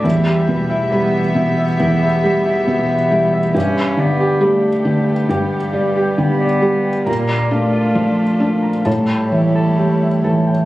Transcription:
X:1
M:4/4
L:1/16
Q:1/4=68
K:Glyd
V:1 name="Harp"
E G B E B2 E e E e B E e B E e | G B d G d2 G g G g d G g d G g | _b d =f =F f3 b A g e A g e A g |]
V:2 name="String section"
[B,Ge]16 | [B,G]16 | [D=F]8 [G,Ec]8 |]
V:3 name="Cello"
G,4 B,12 | C2 B,2 A,4 G,4 B,4 | _B,2 A,6 G,8 |]
V:4 name="Felt piano" clef=bass
E,,2 B,,2 G,2 B,,2 E,,2 G,2 B,,2 G,2 | G,,2 D,2 G,2 D,2 G,,2 G,2 D,2 G,2 | _B,,2 D2 =F,2 D2 A,,2 E,2 G,2 E,2 |]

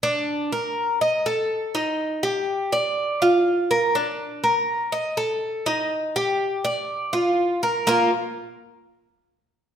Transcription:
X:1
M:4/4
L:1/8
Q:1/4=123
K:Bb
V:1 name="Cuban tres"
D2 B2 e A2 E- | E G2 d2 F2 B | D2 B2 e A2 E- | E G2 d2 F2 B |
[B,FB] z6 z |]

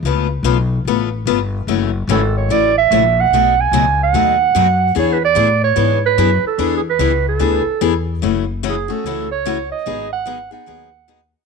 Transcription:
X:1
M:4/4
L:1/8
Q:"Swing" 1/4=147
K:F#m
V:1 name="Clarinet"
z8 | z2 A c d e2 f- | f g2 f4- f | (3c B d- d c2 B2 A- |
(3A G B- B A4 z | z2 G A2 c2 ^d- | ^d f2 f4 z |]
V:2 name="Steel-string acoustic guitar"
[C,A,B,^EB] z [C,A,B,EB] z [C,A,B,EB] z [C,A,B,EB] z | [C,E,A,CF] z [C,E,A,CF] z [C,E,A,CF] z [C,E,A,CF] z | [B,,F,A,^DF] z [B,,F,A,DF] z [B,,F,A,DF] z [B,,F,A,DF] z | [E,B,DG] z [E,B,DG] z [E,B,DG] z [E,B,DG] z |
[E,B,DG] z [E,B,DG] z [E,B,DG] z [E,B,DG] z | [C,E,A,CF] z [C,E,A,CF] [A,CF] [C,E,A,CF] z [C,E,A,CF] z | [^D,F,B,^DG] z [D,F,B,DG] [B,DG] [D,F,B,DG] z [D,F,B,DG] z |]
V:3 name="Upright bass" clef=bass
C,,2 B,,,2 A,,,2 =G,,,2 | F,,,2 G,,,2 A,,,2 ^A,,,2 | B,,,2 C,,2 ^D,,2 F,,2 | E,,2 A,,2 G,,2 F,, z |
E,,2 C,,2 D,, z E,,2 | F,,,4 C,,4 | G,,,4 ^D,,4 |]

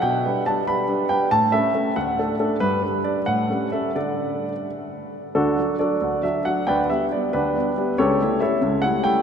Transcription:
X:1
M:6/8
L:1/8
Q:3/8=92
K:D
V:1 name="Grand piano"
g2 a b2 g | a e2 f z2 | B2 d f2 e | d3 z3 |
[DFA]2 [FAd]2 e f | [Bdg] e d [DGB]3 | [GAc]2 [Ace]2 f g |]
V:2 name="Grand piano"
B,, [G,DB] [G,DB] [G,DB] [G,DB] [G,DB] | A,, [A,CA] [A,CA] D,, [A,DA] [A,DA] | G,, [G,DB] [G,DB] A,, [G,CA] [G,CA] | [D,DA]3 z3 |
[D,,D,] [F,D] [F,D] [D,,D,] [F,D] [F,D] | [D,,D,] [G,B,D] [G,B,D] [D,,D,] [G,B,D] [G,B,D] | [C,,C,] [G,A,E] [G,A,E] [C,,C,] [G,A,E] [G,A,E] |]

